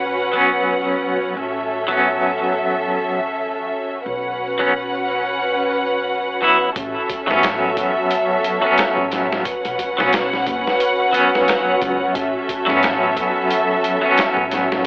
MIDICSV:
0, 0, Header, 1, 5, 480
1, 0, Start_track
1, 0, Tempo, 674157
1, 972, Time_signature, 4, 2, 24, 8
1, 10587, End_track
2, 0, Start_track
2, 0, Title_t, "String section"
2, 0, Program_c, 0, 48
2, 0, Note_on_c, 0, 61, 69
2, 0, Note_on_c, 0, 66, 59
2, 0, Note_on_c, 0, 71, 65
2, 0, Note_on_c, 0, 78, 77
2, 951, Note_off_c, 0, 78, 0
2, 952, Note_off_c, 0, 71, 0
2, 963, Note_on_c, 0, 69, 62
2, 966, Note_on_c, 0, 76, 80
2, 2865, Note_off_c, 0, 66, 0
2, 2867, Note_off_c, 0, 61, 0
2, 2868, Note_off_c, 0, 69, 0
2, 2870, Note_off_c, 0, 76, 0
2, 2895, Note_on_c, 0, 71, 66
2, 2896, Note_on_c, 0, 66, 62
2, 2896, Note_on_c, 0, 78, 81
2, 2897, Note_on_c, 0, 61, 70
2, 4794, Note_off_c, 0, 71, 0
2, 4795, Note_off_c, 0, 61, 0
2, 4795, Note_off_c, 0, 66, 0
2, 4795, Note_off_c, 0, 78, 0
2, 4813, Note_on_c, 0, 61, 73
2, 4816, Note_on_c, 0, 66, 69
2, 4816, Note_on_c, 0, 69, 70
2, 4816, Note_on_c, 0, 76, 86
2, 6715, Note_off_c, 0, 66, 0
2, 6715, Note_off_c, 0, 69, 0
2, 6715, Note_off_c, 0, 76, 0
2, 6727, Note_on_c, 0, 78, 90
2, 6728, Note_on_c, 0, 66, 71
2, 6728, Note_on_c, 0, 71, 71
2, 8630, Note_off_c, 0, 78, 0
2, 8631, Note_off_c, 0, 71, 0
2, 8657, Note_on_c, 0, 69, 79
2, 8657, Note_on_c, 0, 76, 89
2, 10555, Note_off_c, 0, 69, 0
2, 10555, Note_off_c, 0, 76, 0
2, 10587, Note_off_c, 0, 61, 0
2, 10587, Note_off_c, 0, 66, 0
2, 10587, End_track
3, 0, Start_track
3, 0, Title_t, "Clean electric guitar"
3, 0, Program_c, 1, 27
3, 237, Note_on_c, 1, 54, 68
3, 253, Note_on_c, 1, 59, 69
3, 268, Note_on_c, 1, 61, 83
3, 952, Note_off_c, 1, 54, 0
3, 960, Note_off_c, 1, 59, 0
3, 968, Note_off_c, 1, 61, 0
3, 1339, Note_on_c, 1, 54, 78
3, 1357, Note_on_c, 1, 59, 74
3, 1371, Note_on_c, 1, 61, 81
3, 2271, Note_off_c, 1, 54, 0
3, 2280, Note_off_c, 1, 59, 0
3, 2288, Note_off_c, 1, 61, 0
3, 3270, Note_on_c, 1, 54, 77
3, 3275, Note_on_c, 1, 59, 67
3, 3282, Note_on_c, 1, 61, 82
3, 3361, Note_off_c, 1, 54, 0
3, 3364, Note_off_c, 1, 59, 0
3, 3368, Note_off_c, 1, 61, 0
3, 4570, Note_on_c, 1, 54, 66
3, 4578, Note_on_c, 1, 59, 62
3, 4586, Note_on_c, 1, 64, 78
3, 4755, Note_off_c, 1, 54, 0
3, 4759, Note_off_c, 1, 59, 0
3, 4763, Note_off_c, 1, 64, 0
3, 5181, Note_on_c, 1, 54, 87
3, 5196, Note_on_c, 1, 59, 78
3, 5212, Note_on_c, 1, 61, 91
3, 6112, Note_off_c, 1, 54, 0
3, 6120, Note_off_c, 1, 59, 0
3, 6128, Note_off_c, 1, 61, 0
3, 6138, Note_on_c, 1, 54, 87
3, 6153, Note_on_c, 1, 59, 78
3, 6168, Note_on_c, 1, 61, 95
3, 6713, Note_off_c, 1, 54, 0
3, 6721, Note_off_c, 1, 59, 0
3, 6728, Note_off_c, 1, 61, 0
3, 7108, Note_on_c, 1, 54, 83
3, 7119, Note_on_c, 1, 59, 77
3, 7126, Note_on_c, 1, 61, 95
3, 7201, Note_off_c, 1, 54, 0
3, 7206, Note_off_c, 1, 59, 0
3, 7210, Note_off_c, 1, 61, 0
3, 7922, Note_on_c, 1, 54, 79
3, 7937, Note_on_c, 1, 59, 77
3, 7953, Note_on_c, 1, 61, 94
3, 8635, Note_off_c, 1, 54, 0
3, 8642, Note_off_c, 1, 59, 0
3, 8650, Note_off_c, 1, 61, 0
3, 9017, Note_on_c, 1, 54, 89
3, 9034, Note_on_c, 1, 59, 87
3, 9047, Note_on_c, 1, 61, 100
3, 9950, Note_off_c, 1, 54, 0
3, 9959, Note_off_c, 1, 59, 0
3, 9965, Note_off_c, 1, 61, 0
3, 9980, Note_on_c, 1, 54, 84
3, 9995, Note_on_c, 1, 59, 80
3, 10008, Note_on_c, 1, 61, 98
3, 10554, Note_off_c, 1, 54, 0
3, 10562, Note_off_c, 1, 59, 0
3, 10568, Note_off_c, 1, 61, 0
3, 10587, End_track
4, 0, Start_track
4, 0, Title_t, "Upright bass"
4, 0, Program_c, 2, 32
4, 0, Note_on_c, 2, 35, 75
4, 951, Note_off_c, 2, 35, 0
4, 973, Note_on_c, 2, 33, 75
4, 2872, Note_off_c, 2, 33, 0
4, 2891, Note_on_c, 2, 35, 76
4, 4791, Note_off_c, 2, 35, 0
4, 4813, Note_on_c, 2, 33, 87
4, 4935, Note_off_c, 2, 33, 0
4, 5195, Note_on_c, 2, 33, 90
4, 5515, Note_off_c, 2, 33, 0
4, 5532, Note_on_c, 2, 40, 84
4, 5654, Note_off_c, 2, 40, 0
4, 6391, Note_on_c, 2, 33, 74
4, 6712, Note_off_c, 2, 33, 0
4, 6873, Note_on_c, 2, 35, 85
4, 6961, Note_off_c, 2, 35, 0
4, 7109, Note_on_c, 2, 35, 89
4, 7431, Note_off_c, 2, 35, 0
4, 7454, Note_on_c, 2, 30, 89
4, 7575, Note_off_c, 2, 30, 0
4, 8413, Note_on_c, 2, 37, 95
4, 8535, Note_off_c, 2, 37, 0
4, 8652, Note_on_c, 2, 33, 97
4, 8774, Note_off_c, 2, 33, 0
4, 9027, Note_on_c, 2, 33, 96
4, 9350, Note_off_c, 2, 33, 0
4, 9373, Note_on_c, 2, 40, 85
4, 9494, Note_off_c, 2, 40, 0
4, 10232, Note_on_c, 2, 33, 81
4, 10553, Note_off_c, 2, 33, 0
4, 10587, End_track
5, 0, Start_track
5, 0, Title_t, "Drums"
5, 4813, Note_on_c, 9, 36, 109
5, 4813, Note_on_c, 9, 42, 87
5, 4884, Note_off_c, 9, 36, 0
5, 4884, Note_off_c, 9, 42, 0
5, 5052, Note_on_c, 9, 42, 68
5, 5053, Note_on_c, 9, 36, 95
5, 5123, Note_off_c, 9, 42, 0
5, 5124, Note_off_c, 9, 36, 0
5, 5202, Note_on_c, 9, 38, 46
5, 5273, Note_off_c, 9, 38, 0
5, 5292, Note_on_c, 9, 42, 84
5, 5301, Note_on_c, 9, 38, 116
5, 5363, Note_off_c, 9, 42, 0
5, 5372, Note_off_c, 9, 38, 0
5, 5532, Note_on_c, 9, 36, 95
5, 5532, Note_on_c, 9, 42, 65
5, 5603, Note_off_c, 9, 36, 0
5, 5603, Note_off_c, 9, 42, 0
5, 5771, Note_on_c, 9, 42, 88
5, 5843, Note_off_c, 9, 42, 0
5, 6012, Note_on_c, 9, 42, 71
5, 6083, Note_off_c, 9, 42, 0
5, 6249, Note_on_c, 9, 42, 81
5, 6259, Note_on_c, 9, 38, 115
5, 6320, Note_off_c, 9, 42, 0
5, 6330, Note_off_c, 9, 38, 0
5, 6389, Note_on_c, 9, 36, 94
5, 6461, Note_off_c, 9, 36, 0
5, 6490, Note_on_c, 9, 42, 70
5, 6499, Note_on_c, 9, 38, 41
5, 6561, Note_off_c, 9, 42, 0
5, 6571, Note_off_c, 9, 38, 0
5, 6639, Note_on_c, 9, 38, 53
5, 6710, Note_off_c, 9, 38, 0
5, 6731, Note_on_c, 9, 36, 110
5, 6731, Note_on_c, 9, 42, 83
5, 6802, Note_off_c, 9, 36, 0
5, 6802, Note_off_c, 9, 42, 0
5, 6869, Note_on_c, 9, 42, 45
5, 6941, Note_off_c, 9, 42, 0
5, 6971, Note_on_c, 9, 36, 92
5, 6971, Note_on_c, 9, 42, 73
5, 7042, Note_off_c, 9, 36, 0
5, 7042, Note_off_c, 9, 42, 0
5, 7120, Note_on_c, 9, 38, 53
5, 7191, Note_off_c, 9, 38, 0
5, 7210, Note_on_c, 9, 42, 92
5, 7219, Note_on_c, 9, 38, 121
5, 7281, Note_off_c, 9, 42, 0
5, 7291, Note_off_c, 9, 38, 0
5, 7358, Note_on_c, 9, 38, 36
5, 7429, Note_off_c, 9, 38, 0
5, 7451, Note_on_c, 9, 36, 92
5, 7451, Note_on_c, 9, 42, 69
5, 7522, Note_off_c, 9, 36, 0
5, 7522, Note_off_c, 9, 42, 0
5, 7600, Note_on_c, 9, 38, 42
5, 7671, Note_off_c, 9, 38, 0
5, 7691, Note_on_c, 9, 42, 88
5, 7762, Note_off_c, 9, 42, 0
5, 7933, Note_on_c, 9, 42, 72
5, 8005, Note_off_c, 9, 42, 0
5, 8083, Note_on_c, 9, 38, 49
5, 8154, Note_off_c, 9, 38, 0
5, 8173, Note_on_c, 9, 42, 73
5, 8183, Note_on_c, 9, 38, 100
5, 8245, Note_off_c, 9, 42, 0
5, 8254, Note_off_c, 9, 38, 0
5, 8412, Note_on_c, 9, 36, 86
5, 8413, Note_on_c, 9, 42, 67
5, 8483, Note_off_c, 9, 36, 0
5, 8484, Note_off_c, 9, 42, 0
5, 8652, Note_on_c, 9, 36, 112
5, 8652, Note_on_c, 9, 42, 88
5, 8723, Note_off_c, 9, 42, 0
5, 8724, Note_off_c, 9, 36, 0
5, 8893, Note_on_c, 9, 36, 97
5, 8894, Note_on_c, 9, 42, 68
5, 8964, Note_off_c, 9, 36, 0
5, 8965, Note_off_c, 9, 42, 0
5, 9041, Note_on_c, 9, 38, 43
5, 9112, Note_off_c, 9, 38, 0
5, 9134, Note_on_c, 9, 42, 86
5, 9143, Note_on_c, 9, 38, 113
5, 9205, Note_off_c, 9, 42, 0
5, 9214, Note_off_c, 9, 38, 0
5, 9373, Note_on_c, 9, 36, 91
5, 9375, Note_on_c, 9, 42, 66
5, 9445, Note_off_c, 9, 36, 0
5, 9447, Note_off_c, 9, 42, 0
5, 9616, Note_on_c, 9, 42, 91
5, 9687, Note_off_c, 9, 42, 0
5, 9855, Note_on_c, 9, 42, 68
5, 9927, Note_off_c, 9, 42, 0
5, 10093, Note_on_c, 9, 42, 89
5, 10103, Note_on_c, 9, 38, 114
5, 10165, Note_off_c, 9, 42, 0
5, 10174, Note_off_c, 9, 38, 0
5, 10232, Note_on_c, 9, 36, 89
5, 10303, Note_off_c, 9, 36, 0
5, 10334, Note_on_c, 9, 42, 72
5, 10344, Note_on_c, 9, 38, 41
5, 10406, Note_off_c, 9, 42, 0
5, 10415, Note_off_c, 9, 38, 0
5, 10481, Note_on_c, 9, 38, 52
5, 10552, Note_off_c, 9, 38, 0
5, 10587, End_track
0, 0, End_of_file